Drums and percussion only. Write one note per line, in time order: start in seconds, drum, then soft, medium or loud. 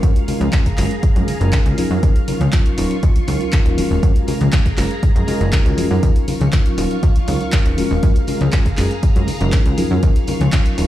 0.03 kick loud
0.03 closed hi-hat medium
0.03 tambourine soft
0.16 closed hi-hat medium
0.28 open hi-hat loud
0.28 tambourine medium
0.28 low conga medium
0.41 closed hi-hat soft
0.41 tambourine soft
0.41 high conga medium
0.52 kick loud
0.52 clap loud
0.52 closed hi-hat medium
0.52 tambourine soft
0.66 kick medium
0.66 closed hi-hat medium
0.66 tambourine soft
0.77 clap medium
0.77 open hi-hat medium
0.77 tambourine medium
0.91 closed hi-hat soft
0.91 tambourine soft
1.03 kick loud
1.03 closed hi-hat medium
1.03 tambourine soft
1.16 closed hi-hat soft
1.16 tambourine soft
1.16 high conga medium
1.28 open hi-hat loud
1.28 tambourine medium
1.28 low conga medium
1.41 closed hi-hat soft
1.41 tambourine soft
1.52 kick loud
1.52 clap loud
1.52 closed hi-hat medium
1.52 tambourine soft
1.66 closed hi-hat soft
1.66 tambourine soft
1.78 open hi-hat medium
1.78 tambourine medium
1.78 high conga medium
1.91 tambourine soft
2.03 kick loud
2.03 closed hi-hat medium
2.03 tambourine soft
2.16 closed hi-hat soft
2.16 tambourine soft
2.28 open hi-hat loud
2.28 tambourine medium
2.28 low conga medium
2.40 closed hi-hat soft
2.40 tambourine soft
2.40 high conga medium
2.52 kick loud
2.52 clap loud
2.52 closed hi-hat medium
2.52 tambourine medium
2.65 closed hi-hat soft
2.65 tambourine soft
2.78 open hi-hat medium
2.78 tambourine medium
2.91 closed hi-hat soft
2.91 tambourine soft
3.03 kick loud
3.03 closed hi-hat medium
3.03 tambourine soft
3.16 closed hi-hat soft
3.16 tambourine soft
3.16 high conga medium
3.27 open hi-hat loud
3.27 tambourine medium
3.27 low conga medium
3.41 closed hi-hat soft
3.41 tambourine soft
3.52 kick loud
3.52 clap loud
3.52 closed hi-hat medium
3.52 tambourine soft
3.66 closed hi-hat soft
3.66 tambourine soft
3.78 open hi-hat medium
3.78 tambourine medium
3.78 high conga medium
3.91 tambourine soft
4.03 kick loud
4.03 closed hi-hat medium
4.03 tambourine soft
4.15 closed hi-hat soft
4.15 tambourine soft
4.27 open hi-hat loud
4.27 tambourine medium
4.27 low conga medium
4.40 closed hi-hat soft
4.40 tambourine soft
4.40 high conga medium
4.52 kick loud
4.52 clap loud
4.52 closed hi-hat medium
4.66 kick medium
4.66 closed hi-hat soft
4.66 tambourine soft
4.77 clap medium
4.77 open hi-hat medium
4.77 tambourine medium
4.91 closed hi-hat soft
4.91 tambourine soft
5.03 kick loud
5.03 closed hi-hat medium
5.03 tambourine soft
5.16 closed hi-hat soft
5.16 tambourine soft
5.16 high conga medium
5.27 open hi-hat loud
5.27 tambourine medium
5.27 low conga medium
5.41 closed hi-hat soft
5.41 tambourine soft
5.52 kick loud
5.52 clap loud
5.52 closed hi-hat medium
5.65 closed hi-hat soft
5.65 tambourine soft
5.77 open hi-hat medium
5.77 tambourine medium
5.77 high conga medium
5.91 tambourine soft
6.03 kick loud
6.03 closed hi-hat medium
6.03 tambourine soft
6.16 closed hi-hat soft
6.16 tambourine soft
6.28 open hi-hat loud
6.28 tambourine medium
6.28 low conga medium
6.40 closed hi-hat soft
6.40 tambourine soft
6.40 high conga medium
6.52 kick loud
6.52 clap loud
6.52 closed hi-hat medium
6.52 tambourine soft
6.66 closed hi-hat soft
6.66 tambourine soft
6.78 open hi-hat medium
6.78 tambourine medium
6.91 closed hi-hat soft
6.91 tambourine soft
7.03 kick loud
7.03 closed hi-hat medium
7.03 tambourine soft
7.15 closed hi-hat soft
7.15 tambourine soft
7.15 high conga medium
7.28 open hi-hat loud
7.28 tambourine medium
7.28 low conga medium
7.41 closed hi-hat soft
7.41 tambourine soft
7.52 kick loud
7.52 clap loud
7.52 closed hi-hat medium
7.52 tambourine soft
7.66 closed hi-hat soft
7.66 tambourine soft
7.78 open hi-hat medium
7.78 tambourine medium
7.78 high conga medium
7.91 tambourine soft
8.03 kick loud
8.03 closed hi-hat medium
8.03 tambourine soft
8.16 closed hi-hat soft
8.16 tambourine soft
8.27 open hi-hat loud
8.27 tambourine medium
8.27 low conga medium
8.40 closed hi-hat soft
8.40 tambourine soft
8.40 high conga medium
8.52 kick loud
8.52 clap loud
8.52 closed hi-hat medium
8.52 tambourine medium
8.66 kick medium
8.66 closed hi-hat soft
8.66 tambourine soft
8.77 clap medium
8.77 open hi-hat medium
8.77 tambourine medium
8.90 closed hi-hat soft
8.90 tambourine soft
9.03 kick loud
9.03 closed hi-hat medium
9.03 tambourine medium
9.15 closed hi-hat soft
9.15 tambourine soft
9.15 high conga medium
9.27 open hi-hat loud
9.27 tambourine medium
9.27 low conga medium
9.41 closed hi-hat soft
9.41 tambourine soft
9.52 kick loud
9.52 clap loud
9.52 closed hi-hat medium
9.52 tambourine medium
9.66 closed hi-hat soft
9.66 tambourine soft
9.78 open hi-hat medium
9.78 tambourine medium
9.78 high conga medium
9.91 tambourine soft
10.03 kick loud
10.03 closed hi-hat medium
10.03 tambourine soft
10.16 closed hi-hat medium
10.16 tambourine soft
10.27 open hi-hat medium
10.27 tambourine medium
10.27 low conga medium
10.40 closed hi-hat soft
10.40 tambourine soft
10.40 high conga medium
10.52 kick loud
10.52 clap loud
10.52 closed hi-hat medium
10.52 tambourine medium
10.65 closed hi-hat medium
10.65 tambourine soft
10.78 open hi-hat medium
10.78 tambourine loud